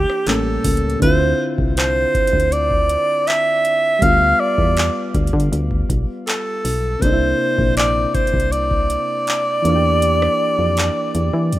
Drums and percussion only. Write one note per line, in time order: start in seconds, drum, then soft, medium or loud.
0.10 cross-stick medium
0.27 clap loud
0.27 closed hi-hat medium
0.64 kick medium
0.64 closed hi-hat medium
0.64 open hi-hat medium
0.77 closed hi-hat medium
0.90 closed hi-hat soft
1.02 kick loud
1.02 closed hi-hat medium
1.58 kick loud
1.77 clap loud
1.77 closed hi-hat medium
2.15 kick medium
2.15 closed hi-hat medium
2.27 closed hi-hat medium
2.33 kick medium
2.40 closed hi-hat medium
2.52 closed hi-hat medium
2.71 kick loud
2.89 closed hi-hat medium
3.27 clap loud
3.27 closed hi-hat medium
3.65 closed hi-hat medium
4.02 kick loud
4.02 closed hi-hat medium
4.58 kick loud
4.77 clap loud
4.77 closed hi-hat medium
5.15 kick medium
5.15 closed hi-hat medium
5.27 closed hi-hat medium
5.33 kick medium
5.40 closed hi-hat medium
5.53 closed hi-hat medium
5.71 kick medium
5.90 kick medium
5.90 closed hi-hat medium
6.27 clap loud
6.27 closed hi-hat medium
6.65 open hi-hat medium
7.02 kick loud
7.02 closed hi-hat medium
7.58 kick loud
7.77 clap loud
7.77 closed hi-hat medium
8.15 kick loud
8.15 closed hi-hat medium
8.27 closed hi-hat medium
8.33 kick medium
8.40 closed hi-hat medium
8.52 closed hi-hat medium
8.71 kick medium
8.90 closed hi-hat medium
9.27 clap loud
9.27 closed hi-hat medium
9.65 closed hi-hat medium
10.02 closed hi-hat medium
10.22 cross-stick medium
10.77 clap loud
10.77 closed hi-hat medium
11.15 closed hi-hat medium
11.52 closed hi-hat medium